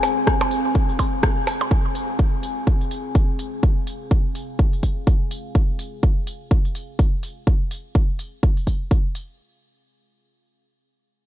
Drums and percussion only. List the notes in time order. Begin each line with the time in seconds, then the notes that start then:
0.03 open hi-hat, percussion blips
0.27 kick, cross-stick
0.41 percussion blips
0.51 open hi-hat
0.75 kick
0.89 open hi-hat
0.99 kick, open hi-hat, percussion blips
1.23 kick, cross-stick, open hi-hat
1.47 open hi-hat, percussion blips
1.61 percussion blips
1.71 kick
1.95 open hi-hat
2.19 kick
2.43 open hi-hat
2.67 kick
2.81 open hi-hat
2.91 open hi-hat
3.15 kick, open hi-hat
3.39 open hi-hat
3.63 kick
3.87 open hi-hat
4.11 kick
4.35 open hi-hat
4.59 kick
4.73 open hi-hat
4.83 kick, open hi-hat
5.07 kick, open hi-hat
5.31 open hi-hat
5.55 kick
5.79 open hi-hat
6.03 kick
6.27 open hi-hat
6.51 kick
6.65 open hi-hat
6.75 open hi-hat
6.99 kick, open hi-hat
7.23 open hi-hat
7.47 kick
7.71 open hi-hat
7.95 kick
8.19 open hi-hat
8.43 kick
8.57 open hi-hat
8.67 kick, open hi-hat
8.91 kick, open hi-hat
9.15 open hi-hat